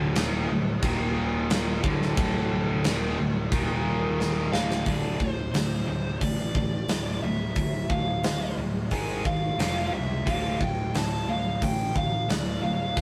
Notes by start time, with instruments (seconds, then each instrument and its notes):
Already playing: picked electric bass D1, distorted electric guitar D2 A2 D3
0.15 picked electric bass D#1, distorted electric guitar D#2 A#2 D#3, snare, crash
0.49 picked electric bass D1, distorted electric guitar D2 A2
0.82 picked electric bass D#1, distorted electric guitar D#2 A#2 D#3, kick, crash
1.50 snare, crash
1.83 picked electric bass D1, distorted electric guitar D2 A2 D3, kick
2.02 snare
2.17 picked electric bass D1, distorted electric guitar D2 A2 D3, kick, crash
2.84 picked electric bass D#1, distorted electric guitar D#2 A#2 D#3, snare, crash
3.18 picked electric bass D1, distorted electric guitar D2 A2
3.51 picked electric bass D#1, distorted electric guitar D#2 A#2 D#3, kick, crash
4.20 snare
4.52 picked electric bass D1, distorted electric guitar D2 A2 D3, lead electric guitar F5, snare
4.71 snare
4.85 picked electric bass D1, distorted electric guitar D2 A2 D3, lead electric guitar D5, kick, open hi-hat
5.19 picked electric bass D1, distorted electric guitar D2 A2, lead electric guitar C5, kick
5.52 picked electric bass D1, distorted electric guitar D2 A2, lead electric guitar C5, snare, open hi-hat
5.87 picked electric bass D1, distorted electric guitar D2 A2
6.21 picked electric bass A1, distorted electric guitar D2 A2, lead electric guitar D5, kick, open hi-hat
6.55 distorted electric guitar D2 A2, kick
6.88 picked electric bass D1, distorted electric guitar D2 A2, snare, open hi-hat
7.21 picked electric bass D1, distorted electric guitar D2 A2, lead electric guitar E5
7.56 picked electric bass D1, distorted electric guitar D2 A2, kick, open hi-hat
7.90 picked electric bass D1, distorted electric guitar D2 A2, lead electric guitar F5, kick
8.23 picked electric bass D1, distorted electric guitar D2 A2, snare, open hi-hat
8.56 picked electric bass D1, distorted electric guitar D2 A2
8.91 picked electric bass G#1, distorted electric guitar G#2 D#3 G#3, lead electric guitar G#5, kick, open hi-hat
9.25 distorted electric guitar G#2 D#3, lead electric guitar F5, kick
9.58 picked electric bass F1, distorted electric guitar F2 C3 F3, snare, open hi-hat
9.93 picked electric bass C#2, distorted electric guitar F2 C3, lead electric guitar E5
10.26 picked electric bass D1, distorted electric guitar D2 A2 D3, lead electric guitar F5, kick, open hi-hat
10.60 picked electric bass D1, distorted electric guitar D2 A2, lead electric guitar G5, kick
10.93 picked electric bass D1, distorted electric guitar D2 A2, lead electric guitar A5, snare, open hi-hat
11.27 picked electric bass D1, distorted electric guitar D2 A2, lead electric guitar F5
11.62 picked electric bass A1, distorted electric guitar D2 A2, lead electric guitar G5, kick, open hi-hat
11.95 distorted electric guitar D2 A2, lead electric guitar F5, kick
12.28 picked electric bass D1, distorted electric guitar D2 A2, lead electric guitar D5, snare, open hi-hat
12.61 picked electric bass D1, distorted electric guitar D2 A2, lead electric guitar F5
12.97 picked electric bass D1, distorted electric guitar D2 A2, kick, open hi-hat